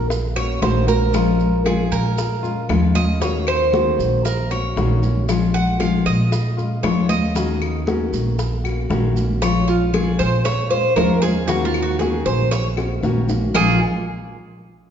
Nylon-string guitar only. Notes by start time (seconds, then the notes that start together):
0.10 muted nylon-string guitar stroke
0.36 A#3 C#4 F#4
0.61 D#3 A#3 C#4 F#4
0.87 A#3 C#4 F#4
1.12 F3 G#3 C#4 F4
1.64 F3 G#3 C#4 F4
2.17 muted nylon-string guitar stroke
2.43 G#3 C#4 F4
2.69 F3 G#3 C#4 F4
2.95 G#3 C#4 F4
3.20 D#3 A#3 C#4 F#4
3.72 D#3 A#3 C#4 F#4
4.25 muted nylon-string guitar stroke
4.51 A#3 C#4 F#4
4.76 D#3 A#3 C#4 F#4
5.02 A#3 C#4 F#4
5.28 F3 G#3 C#4 F4
5.79 F3 G#3 C#4 F4
6.31 muted nylon-string guitar stroke
6.57 G#3 C#4 F4
6.83 F3 G#3 C#4 F4
7.08 G#3 C#4 F4
7.34 D#3 A#3 C#4 F#4
7.86 D#3 A#3 C#4 F#4
8.39 muted nylon-string guitar stroke
8.64 A#3 C#4 F#4
8.89 D#3 A#3 C#4 F#4
9.15 A#3 C#4 F#4
9.41 F3 G#3 C#4 F4
9.93 F3 G#3 C#4 F4
10.45 muted nylon-string guitar stroke
10.70 G#3 C#4 F4
10.96 F3 G#3 C#4 F4
11.22 G#3 C#4 F4
11.47 D#3 A#3 C#4 F#4
11.99 D#3 A#3 C#4 F#4
12.51 muted nylon-string guitar stroke
12.77 A#3 C#4 F#4
13.02 D#3 A#3 C#4 F#4
13.29 A#3 C#4 F#4
13.54 A#2 F3 G#3 C#4 F4